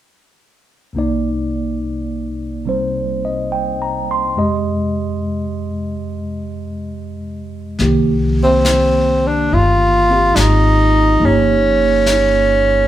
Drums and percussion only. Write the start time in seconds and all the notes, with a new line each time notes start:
7.79 brush sweep, snare
8.65 snare, hi-hat pedal
9.50 brush sweep
10.36 snare, hi-hat pedal
11.22 brush sweep
12.06 snare, hi-hat pedal